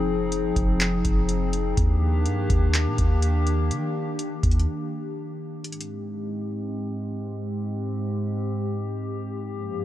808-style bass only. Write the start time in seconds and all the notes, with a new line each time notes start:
Already playing: F1
0.56 F1
1.05 F1
1.77 D#2
2.26 G2
2.50 D#2
2.86 A#2
2.99 D#2
3.71 D#3
4.43 D#2